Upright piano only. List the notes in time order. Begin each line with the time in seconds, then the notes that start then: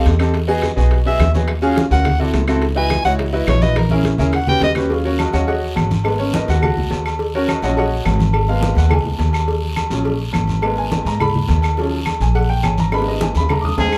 Already playing: C4 D#4 G4 A4
0.19 C4 D#4 G4 A4
0.48 B3 D#4 F#4 G#4
0.76 B3 D#4 F#4 G#4
1.05 B3 D#4 F#4 G#4
1.34 B3 D#4 F#4 G#4
1.62 C#4 F4 F#4 G#4
1.90 C#4 F4 F#4 A#4
2.19 C4 E4 F#4 A4
2.48 C4 E4 F#4 A4
2.75 D#4 E4 F#4 B4
3.05 D#4 E4 F#4 C#5
3.33 D#4 E4 F#4 B4
3.62 D#4 E4 F#4 B4
3.91 C#4 E4 G#4 A#4
4.19 C#4 E4 G#4 A#4
4.48 C#4 F#4 G4 B4
4.76 C#4 F#4 G4 B4
4.90 F#3 C#4 F4
5.05 C#4 F#4 A#4 C#5
5.20 D#4 F#4 A#4 D#5
5.33 F#3 C#4 F4 F#4 C#5 D#5 F#5
5.48 F#4 C#5 D#5 F#5
6.04 G#3 A#3 B3
6.19 C#4 C#5
6.35 D#4 A#4 B4 D#5
6.50 F#4 F#5
6.64 F#4 F#5
7.35 C#4 F#4 A#4 C#5
7.49 D#4 F#4 A#4 D#5
7.63 F3 F#3 C#4 F#4 C#5 D#5 F#5
7.78 F#4 C#5 D#5 F#5
8.48 G#3 A#3 B3 F5
8.78 F#5
8.92 G#5
9.91 F3 F#3 C#4
10.63 G#3 A#3 B3
10.78 G#5
11.07 A#5
11.21 B5
11.78 F3 F#3 C#4
12.22 G#5
12.35 F#5
12.50 G5
12.65 G#5
12.79 A#5
12.93 G#3 A#3 B3 B5
13.08 D#5
13.22 G#5
13.37 B5
13.51 A#5
13.61 D6 D#6